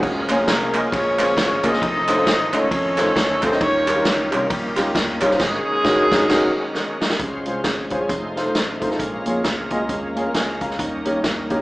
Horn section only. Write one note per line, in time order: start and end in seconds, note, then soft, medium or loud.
0.48 0.90 A#3 medium
0.48 0.90 F4 medium
0.48 0.90 A#4 medium
0.91 1.63 C#4 loud
0.91 1.77 F4 medium
0.91 1.77 A#4 medium
0.91 1.63 C#5 loud
1.65 2.54 D#4 loud
1.65 2.50 A4 medium
1.65 2.50 C5 medium
1.65 2.54 D#5 loud
2.54 3.44 C#4 medium
2.54 3.39 A4 medium
2.54 3.44 C#5 loud
3.43 3.61 C4 medium
3.43 3.61 C5 medium
3.62 4.03 C#4 loud
3.62 4.47 F4 medium
3.62 4.47 G4 medium
3.62 4.03 C#5 loud
4.07 4.31 C#4 medium
4.07 4.31 C#5 medium
4.32 4.49 A#3 medium
4.32 4.50 A#4 medium
4.49 5.17 G3 medium
4.49 5.35 A#3 medium
4.49 5.36 C#4 medium
4.49 5.17 G4 medium
5.39 6.70 G#3 loud
5.39 6.70 C#4 medium
5.39 6.70 D#4 medium
5.39 6.70 G#4 loud